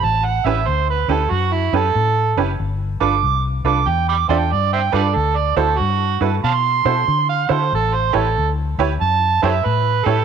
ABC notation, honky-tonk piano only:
X:1
M:4/4
L:1/16
Q:"Swing" 1/4=94
K:Ador
V:1 name="Honky-tonk piano"
z2 [^CEGB] z3 [CEGB] z3 [CEGB] z3 [CEGB] z | z2 [D=FAB] z3 [DFAB] z3 [DFAd] z3 [DFAB] z | z2 [EFAc] z3 [EFAB] z3 [EFAc] z3 [EFAc] z | z2 [EGB^c] z3 [EGBc] z3 [EGBc] z3 [EGBc] z |]